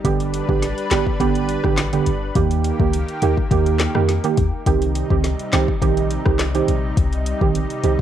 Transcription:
Already playing: analog synth pad G3
0.04 808-style bass G1, synth stab D3 B3 G4, analog synth pad D4 B4, kick, closed hi-hat
0.20 closed hi-hat
0.34 closed hi-hat
0.49 808-style bass A1, synth stab D3 B3 G4, kick
0.62 snare, closed hi-hat
0.78 closed hi-hat
0.91 808-style bass G1, synth stab D3 B3 G4, snare, clap, closed hi-hat
1.07 kick
1.20 808-style bass G1, synth stab D3 B3 G4, kick, closed hi-hat
1.35 closed hi-hat
1.49 closed hi-hat
1.64 808-style bass A1, synth stab D3 B3 G4, kick, cross-stick
1.78 snare, clap, closed hi-hat
1.93 synth stab D3 B3 G4, closed hi-hat
2.06 808-style bass G1, closed hi-hat
2.35 808-style bass D#2, synth stab D#3 A#3 G4, analog synth pad D#3 A#3 G4, kick, closed hi-hat
2.51 closed hi-hat
2.64 closed hi-hat
2.79 808-style bass C#2, synth stab D#3 A#3 G4, kick
2.93 closed hi-hat
3.08 closed hi-hat
3.22 808-style bass D#2, synth stab D#3 A#3 G4, closed hi-hat
3.37 kick
3.51 808-style bass D#2, synth stab D#3 A#3 G4, kick, closed hi-hat
3.66 closed hi-hat
3.80 snare, clap, closed hi-hat
3.95 808-style bass F2, synth stab D#3 A#3 G4, cross-stick
4.08 snare, closed hi-hat
4.24 synth stab D#3 A#3 G4, closed hi-hat
4.37 808-style bass D#2, kick, closed hi-hat
4.66 808-style bass C2, analog synth pad C3 G3 D#4, synth stab D#3 C4 G4, kick, closed hi-hat
4.82 closed hi-hat
4.95 closed hi-hat
5.10 808-style bass C#2, synth stab D#3 C4 G4, kick
5.24 snare, closed hi-hat
5.39 closed hi-hat
5.53 808-style bass C2, synth stab D#3 C4 G4, snare, clap, closed hi-hat
5.68 kick
5.82 808-style bass A#1, synth stab D#3 C4 G4, kick, closed hi-hat
5.97 closed hi-hat
6.11 closed hi-hat
6.25 808-style bass C2, synth stab D#3 C4 G4, kick, cross-stick
6.39 snare, clap, closed hi-hat
6.54 synth stab D#3 C4 G4, closed hi-hat
6.68 808-style bass A#1, closed hi-hat
6.97 808-style bass C2, kick, closed hi-hat
7.13 closed hi-hat
7.26 closed hi-hat
7.41 808-style bass A#1, synth stab D#3 C4 G4, kick
7.55 closed hi-hat
7.70 closed hi-hat
7.83 808-style bass C2, synth stab D#3 C4 G4, closed hi-hat

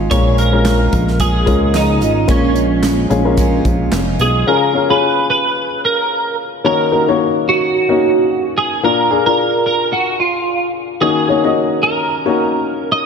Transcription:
Already playing: steel-string acoustic guitar F3 G#3 C#4 F4, upright piano G#3 C#4 F4 C#5 F5 G#5 A#5
0.11 analog synth bass A#1, steel-string acoustic guitar A#2 F3 G#3 C#4 F4, upright piano A#2 G#3 C#4 F4 A#4, clean electric guitar C#5, kick, closed hi-hat
0.38 clean electric guitar A#4, closed hi-hat
0.53 upright piano G#3 C#4 F4 A#4
0.65 steel-string acoustic guitar F3 G#3 C#4 F4, snare, clap, closed hi-hat
0.93 analog synth bass A#1, kick, closed hi-hat
1.08 snare
1.20 steel-string acoustic guitar A#2 F3 G#3 C#4 F4, clean electric guitar G#4, kick, closed hi-hat
1.46 analog synth bass C#2, upright piano G#3 C#4 F4 A#4, kick, closed hi-hat
1.74 steel-string acoustic guitar F3 G#3 C#4 F4, clean electric guitar D#4, snare, clap, closed hi-hat
2.01 analog synth bass G#1, steel-string acoustic guitar G#3 C#4 F4, closed hi-hat
2.27 analog synth bass A#1, upright piano A#2 G#3 C#4 F4 A#4, steel-string acoustic guitar A#2 F3 G#3 C#4 F4, clean electric guitar C#4, kick, closed hi-hat
2.56 closed hi-hat
2.83 steel-string acoustic guitar F3 G#3 C#4 F4, snare, clap, closed hi-hat
3.10 analog synth bass A#1, upright piano G#3 C#4 F4 G#4, closed hi-hat
3.25 upright piano G#3 C#4 F4 A#4
3.37 steel-string acoustic guitar A#2 F3 G#3 C#4 F4, kick, closed hi-hat
3.65 analog synth bass A#1, kick, closed hi-hat
3.91 analog synth bass F1, steel-string acoustic guitar F3 G#3 C#4 F4, snare, clap, closed hi-hat
4.19 analog synth bass B1, clean electric guitar G#4, closed hi-hat
4.47 upright piano C#3 C#4 F4 G#4, clean electric guitar A#4
4.74 upright piano C#4 F4 G#4
4.89 upright piano C#4 F4 G#4, clean electric guitar B4
5.30 clean electric guitar B4
5.85 clean electric guitar A#4
6.64 upright piano D#3 A#3 C#4 D#4 F#4 C#5, clean electric guitar A#4
6.92 upright piano A#3 C#4 D#4 F#4 A#4
7.08 upright piano A#3 C#4 D#4 F#4 C#5
7.49 clean electric guitar F#4
7.89 upright piano A#3 C#4 D#4 F#4 A#4
8.58 clean electric guitar G#4
8.83 upright piano A#2 D4 F4 A#4, clean electric guitar A#4
9.10 upright piano D4 F4 G#4
9.26 upright piano D4 F4 A#4, clean electric guitar A#4
9.66 clean electric guitar A#4
9.93 clean electric guitar F#4
10.20 clean electric guitar F4
11.01 upright piano D#3 A#3 C#4 D#4 F#4 C#5, clean electric guitar G#4
11.29 upright piano A#3 C#4 D#4 F#4 C#5
11.44 upright piano A#3 C#4 D#4 F#4 D#5
11.83 clean electric guitar A#4
12.25 upright piano A#3 C#4 D#4 F#4 C#5
12.92 clean electric guitar D#5

